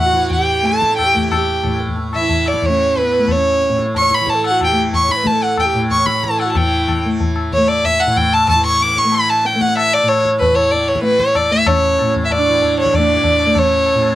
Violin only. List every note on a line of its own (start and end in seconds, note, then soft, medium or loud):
0.00 0.30 F#5 medium
0.32 0.67 G5 medium
0.66 0.97 A5 medium
0.97 1.28 G5 medium
1.30 1.77 G5 medium
2.15 2.49 E5 medium
2.48 2.67 D5 medium
2.65 3.00 C#5 medium
2.98 3.33 B4 medium
3.31 3.79 C#5 medium
3.97 4.16 C#6 loud
4.14 4.32 B5 medium
4.30 4.45 A5 medium
4.47 4.61 F#5 medium
4.64 4.77 G5 loud
4.95 5.13 C#6 loud
5.12 5.29 B5 medium
5.27 5.45 A5 medium
5.43 5.59 F#5 medium
5.60 5.74 G5 medium
5.91 6.08 C#6 medium
6.06 6.26 B5 medium
6.24 6.43 A5 medium
6.41 6.51 F#5 medium
6.51 6.59 A5 medium
6.57 7.05 G5 medium
7.54 7.70 C#5 loud
7.69 7.86 D5 loud
7.85 8.02 E5 loud
8.00 8.19 F#5 loud
8.18 8.35 G5 loud
8.34 8.49 A5 loud
8.49 8.64 A5 loud
8.66 8.84 C#6 loud
8.83 8.99 D6 loud
8.98 9.16 C#6 loud
9.14 9.31 B5 loud
9.30 9.48 A5 loud
9.46 9.63 G5 medium
9.62 9.77 F#5 loud
9.77 9.95 E5 loud
9.94 10.10 D5 loud
10.08 10.24 C#5 loud
10.39 10.57 B4 loud
10.55 10.73 C#5 loud
10.71 10.90 D5 medium
10.88 11.03 C#5 medium
11.03 11.22 B4 loud
11.20 11.38 C#5 medium
11.36 11.54 D5 medium
11.53 11.69 E5 loud
11.67 12.15 C#5 loud
12.26 12.34 E5 medium
12.32 12.78 D5 loud
12.80 12.97 C#5 medium
12.95 13.60 D5 medium
13.59 14.15 C#5 loud